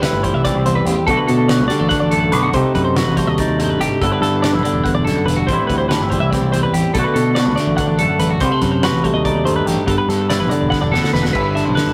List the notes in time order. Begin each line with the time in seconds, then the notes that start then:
Already playing: A2 G3
0.02 E4 B4, snare, closed hi-hat
0.13 G1
0.23 E3 G3 C5, kick, closed hi-hat
0.34 C2 E5
0.45 C4 D5, kick, snare, closed hi-hat
0.55 C2
0.66 E2 G3 C5, closed hi-hat
0.75 B4
0.85 A1 G4, closed hi-hat
1.07 B1 B2 D3 A3 D4 F#4 A4, kick, closed hi-hat
1.17 B4
1.27 B2 A4, closed hi-hat
1.49 F#4 D5, snare, closed hi-hat
1.58 D2 B4
1.68 D3 G3 D5, snare, closed hi-hat
1.79 A1 A3
1.89 D4 F#5, kick, snare, closed hi-hat
2.00 A1 D5
2.11 F#2 A3 A4, closed hi-hat
2.32 B1 B4, closed hi-hat
2.43 F#4
2.53 C2 C3 A3 D#4 G4 C5, kick, closed hi-hat
2.75 F#2 B4, kick, closed hi-hat
2.85 C5
2.96 F#4 B4, snare, closed hi-hat
3.06 A1
3.17 G3 A3 C5, kick, snare, closed hi-hat
3.27 D#2 D#5
3.38 D#4 D5, kick, snare, closed hi-hat
3.48 D#2
3.60 G2 A3 C5, closed hi-hat
3.70 B4
3.79 G#1 G4, snare, closed hi-hat
4.02 G1 G2 D3 B3 D4 E4 A4, kick, closed hi-hat
4.12 B4
4.21 G2 A4, snare, closed hi-hat
4.42 D4 D5, snare, closed hi-hat
4.53 B1 E4 B4
4.63 D3 B3 D5, closed hi-hat
4.73 E1
4.84 E2 F#5, kick, closed hi-hat
4.95 E1 D5
5.05 F#2 A4, snare, closed hi-hat
5.25 E1 B4, closed hi-hat
5.29 G2
5.36 F#4
5.47 A1 A2 C5, kick, closed hi-hat
5.51 E3 G3 C4 E4
5.67 D2 B4, kick, closed hi-hat
5.78 C5
5.89 D4 B4, snare, closed hi-hat
5.98 G1 E4
6.10 E3 G3 C5, kick, closed hi-hat
6.20 C2 E5
6.31 C4 D5, kick, snare, closed hi-hat
6.41 C2
6.52 E2 G3 C5, closed hi-hat
6.63 B4
6.73 A1 G4, closed hi-hat
6.94 B1 B2 D3 A3 A4, kick, closed hi-hat
6.98 D4 F#4
7.04 B4
7.14 B2 A4, closed hi-hat
7.35 D5, snare, closed hi-hat
7.39 F#4
7.46 D2 B4
7.56 D3 D5, snare, closed hi-hat
7.60 A3
7.67 A1
7.77 D4 F#5, kick, snare, closed hi-hat
7.87 A1 D5
7.99 F#2 A3 A4, closed hi-hat
8.19 A1 B4, closed hi-hat
8.31 F#4
8.40 C2 C3 G3 C5, kick, closed hi-hat
8.52 A3
8.62 F#2 B4, kick, snare, closed hi-hat
8.72 C5
8.83 F#4 B4, snare, closed hi-hat
8.92 A1
9.04 G3 A3 C5, kick, closed hi-hat
9.14 D#2 D#5
9.25 D#4 D5, kick, closed hi-hat
9.34 D#2
9.44 G2 A3 C5, closed hi-hat
9.56 B4
9.66 A1 G4, snare, closed hi-hat
9.86 G1 G2 B3 A4, kick, closed hi-hat
9.98 B4
10.08 G2 A4, snare, closed hi-hat
10.30 E4 D5, snare, closed hi-hat
10.40 B1 B4
10.49 D3 B3 D5, closed hi-hat
10.62 E1
10.70 B3 F#5, kick, snare
10.81 E1 D4 D5
10.92 D2 B3 A4, snare
11.04 snare
11.13 E1 B4, snare
11.23 F#4, snare
11.33 G1 G2 E4 B4, kick, crash
11.55 D4 E5, snare, closed hi-hat
11.65 B1 C5
11.75 D3 B4, snare, closed hi-hat
11.87 G1